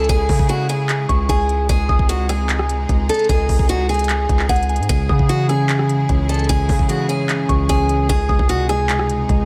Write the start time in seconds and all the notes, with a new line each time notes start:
Already playing: C#3 G#3 E4 G#4
0.04 closed hi-hat
0.09 C#2 G#4, kick, closed hi-hat
0.29 C#3, kick, open hi-hat
0.39 kick
0.49 F#4, closed hi-hat
0.69 G#4, closed hi-hat
0.89 clap, closed hi-hat
1.09 C#2 C#6, kick, closed hi-hat
1.29 C#2 G#4, kick, closed hi-hat
1.49 closed hi-hat
1.69 C#2 C3 D#4 G#4, kick, closed hi-hat
1.89 C#2 D#6, kick
1.99 kick
2.09 F#4, closed hi-hat
2.29 G#4, cross-stick, closed hi-hat
2.49 clap, closed hi-hat
2.59 cross-stick
2.69 closed hi-hat
2.89 C#2, kick, closed hi-hat
3.09 A4, closed hi-hat
3.14 closed hi-hat
3.19 closed hi-hat
3.24 closed hi-hat
3.29 C#2 G#4, kick, closed hi-hat
3.49 C#2, kick, open hi-hat
3.59 kick
3.69 F#4, closed hi-hat
3.89 G#4, closed hi-hat
3.94 closed hi-hat
3.99 closed hi-hat
4.04 closed hi-hat
4.09 clap, closed hi-hat
4.29 C#2, kick, closed hi-hat
4.39 clap
4.49 C#2 G#4 F#5, kick, closed hi-hat
4.56 closed hi-hat
4.63 closed hi-hat
4.69 G#5, closed hi-hat
4.76 G#2, closed hi-hat
4.83 closed hi-hat
4.89 C#2 C#3 G#3 E4 G#4, kick, closed hi-hat
5.09 C#3 D#6, kick
5.19 kick
5.29 E3 F#4, closed hi-hat
5.49 C#4 G#4, cross-stick, closed hi-hat
5.69 C#3, clap, closed hi-hat
5.79 cross-stick
5.89 C#3, closed hi-hat
6.09 C#2 C#4, kick, closed hi-hat
6.29 A4, closed hi-hat
6.34 closed hi-hat
6.39 closed hi-hat
6.44 closed hi-hat
6.49 C#2 C#3 G#4, kick, closed hi-hat
6.69 C#3, kick, open hi-hat
6.79 kick
6.89 E3 F#4, closed hi-hat
7.09 C#4 G#4, closed hi-hat
7.29 C#3, clap, closed hi-hat
7.49 C#2 C#3 C#6, kick, closed hi-hat
7.69 C#2 C#4 G#4, kick, closed hi-hat
7.89 closed hi-hat
8.09 C#2 C3 D#4 G#4, kick, closed hi-hat
8.29 C#2 D#6, kick
8.39 C#2, kick
8.49 C3 F#4, closed hi-hat
8.69 G#3 G#4, cross-stick, closed hi-hat
8.89 C#2, clap, closed hi-hat
8.99 cross-stick
9.10 C#2, closed hi-hat
9.29 C#2 G#3, kick, closed hi-hat